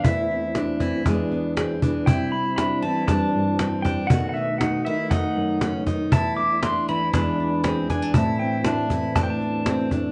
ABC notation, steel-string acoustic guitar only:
X:1
M:4/4
L:1/8
Q:1/4=118
K:Am
V:1 name="Steel-string acoustic guitar"
E2 D E D2 C D | E2 D E D2 C D | ^F2 ^D E D2 ^C D | E2 D E D2 C D |
E2 D E D2 C D |]